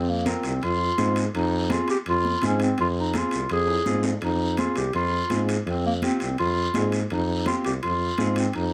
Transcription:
Already playing: F2 C4
0.10 A#3
0.25 C4 F4 A#4, high conga, high timbale, short guiro
0.43 C2, high timbale, short guiro
0.62 F2 F4, high timbale, long guiro
0.98 G#2 C4 F4 G#4, high conga, high timbale, short guiro
1.16 high timbale, short guiro
1.35 F2 D#4, high timbale, long guiro
1.70 C4 F4 G#4, high conga, high timbale, short guiro
1.88 G4, high timbale, short guiro
2.06 F2 F4, high timbale, long guiro
2.25 high conga
2.42 G#2 C4 F4 G#4, high conga, high timbale, short guiro
2.46 C#4
2.60 C4, high timbale, short guiro
2.78 F2 F4, high timbale, long guiro
3.00 D#4
3.14 C4 F4 G#4, high conga, high timbale, short guiro
3.18 F4
3.31 C2, high timbale, short guiro
3.49 F2 G#4, high timbale, long guiro
3.67 high timbale
3.86 G#2 C4 F4 G#4, high conga, short guiro
4.03 low timbale, short guiro
4.21 F2 D#4, high timbale, long guiro
4.57 C4 F4 G#4, high conga, high timbale, short guiro
4.76 C2 G4, high timbale, short guiro
4.93 F2 F4, high timbale, long guiro
5.30 G#2 C4 F4 G#4, high conga, high timbale, short guiro
5.49 high timbale, short guiro
5.66 F2 C4, high timbale, long guiro
5.86 A#3
6.02 C4 F4 G4, high conga, high timbale, short guiro
6.20 C2, high timbale, short guiro
6.38 F2 F4, high timbale, long guiro
6.74 G#2 C4 F4 G#4, high conga, high timbale, low timbale, short guiro
6.92 high timbale, short guiro
7.10 F2 D#4, high timbale, long guiro
7.46 C4 F4 G4, high conga, high timbale, short guiro
7.64 C2 G4, high timbale, short guiro
7.83 F2 F4, high timbale, long guiro
8.18 G#2 C4 F4 G#4, high conga, high timbale, short guiro
8.36 C4, high timbale, short guiro
8.53 F2 D#4, high timbale, long guiro

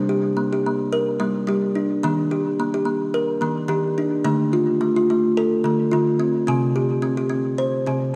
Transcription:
Already playing: G3
0.09 G4
0.37 A#3
0.53 G4
0.66 A#3
0.93 A#4
1.20 G3 A#3
1.47 G3 G4
1.75 D4
2.03 D#3 A#3
2.31 G4
2.60 A#3
2.74 G4
2.85 A#3
3.14 A#4
3.41 D#3 A#3
3.68 D#3 G4
3.98 D4
4.25 D3 A3
4.53 F4
4.81 A3
4.96 F4
5.10 A3
5.37 A4
5.64 D3 A3
5.91 D3 F4
6.20 C4
6.47 C3 C4
6.76 G4
7.02 C4
7.17 G4
7.29 C4
7.58 C5
7.86 C3 C4

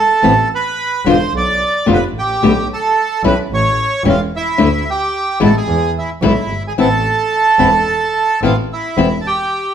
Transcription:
0.00 A4 A5
0.23 A1 E3 B3 C4 E4
0.55 B4 B5
1.06 E1 B2 D3 B3 D4 F4 C6
1.10 C5
1.33 B1 D5
1.38 D6
1.86 F1 B2 D3 B3 D4 F4
1.93 B4 B5
2.15 A1 G4 G5
2.42 B1 B2 D3 A3 B3 G4
2.73 A4 A5
3.23 B1 E3 G3 C#4 E4 B4 B5
3.50 A1
3.54 C#5 C#6
4.05 E1 E3 G3 C#4 E4
4.09 F4 F5
4.36 E4 E5
4.58 D2 D3 A3 D4 E4
4.90 G4 G5
5.40 A1 B2 E3 G#3 B3 E4
5.45 A4 A5
5.57 G#4 G#5
5.67 E2
5.98 E4 E5
6.22 B1 B2 E3 G#3 B3 E4
6.27 E4 E5
6.50 G1
6.68 G#4 G#5
6.77 A1 E3 B3 C4 E4 A4 A5
7.59 E1 E3 B3 C4 E4
8.41 A1 E3 B3 C4 E4 F4 F5
8.73 E4 E5
8.97 E1 E3 B3 C4 E4
9.21 A5
9.27 G4 G5

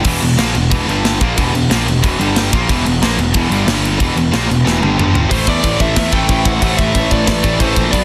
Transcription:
0.04 E1 E2 B2 E3 B3 F#4 G4, kick, crash
0.21 E1 E2 B2, crash
0.37 A#1 A#2 F3 A#3, snare, crash
0.55 E1 E2 B2, crash
0.70 E1 E2 B2 E3, kick, crash
0.87 G1 G2 D3 G3 D4, crash
1.05 snare, crash
1.20 A#1 A#2 E3 F3 A#3 B3 F#4, kick, crash
1.36 E1 E2 B2 E3, kick, crash
1.53 E1 E2 B2, crash
1.70 A#1 A#2 F3 A#3, snare, crash
1.87 E1 E2 B2, crash
2.02 E1 E2 B2 E3, kick, crash
2.19 G1 G2 D3 G3 D4, crash
2.36 snare, crash
2.52 A#1 A#2 E3 F3 A#3 B3 F#4, kick, crash
2.68 E1 E2 B2 E3, kick, crash
2.86 E1 E2 B2, crash
3.02 A#1 A#2 F3 A#3, snare, crash
3.18 E1 E2 B2, crash
3.34 E1 E2 B2 E3, kick, crash
3.50 G1 G2 D3 G3, crash
3.66 G1 G2 D3 G3 D4, snare, crash
3.85 crash
3.98 E1 E2 B2 E3 B3 F#4 G4, kick, crash
4.16 E1 E2 B2, crash
4.32 A#1 A#2 F3 A#3, snare, crash
4.49 E1 E2 B2, crash
4.64 E1 E2 B2 E3, snare
4.80 G1 G2 D3 G3, high tom
4.97 G1 G2 D3 G3 D4, mid tom
5.15 floor tom
5.30 A1 A2 E3 A3 E4 B4 C5, kick, crash
5.47 E2 D5, kick, crash
5.64 A1, kick, crash
5.80 A1 E5, kick, crash
5.96 E2 E5, kick, snare, crash
6.12 A1 A2 E3 A3 G5, kick, crash
6.27 A1 A2 E3, kick, crash
6.31 A3
6.45 A1 F#5, kick, crash
6.61 A1 A2 E3 A3, kick, crash
6.78 A1 E5, kick, crash
6.95 A1, kick, crash
7.11 A1 D5, kick, crash
7.27 A1 D5, kick, snare, crash
7.42 A1 A2 E3 A3, kick, crash
7.59 A1 A2 E3 C5, kick, crash
7.64 A3
7.76 A#1, kick, crash
7.91 B1 B2 F#3 B3 D4 D5, kick, crash
7.95 D5

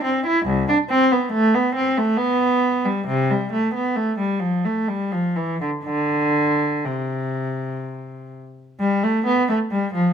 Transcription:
0.04 C4
0.27 E4
0.46 C2
0.69 D4
0.90 C4
1.12 B3
1.32 A3
1.54 B3
1.76 C4
1.97 A3
2.17 B3
2.85 G3
3.07 C3
3.31 G3
3.53 A3
3.75 B3
3.96 A3
4.19 G3
4.39 F3
4.65 A3
4.88 G3
5.12 F3
5.36 E3
5.61 D3
5.84 D3
6.85 C3
8.80 G3
9.03 A3
9.26 B3
9.50 A3
9.71 G3
9.95 F3

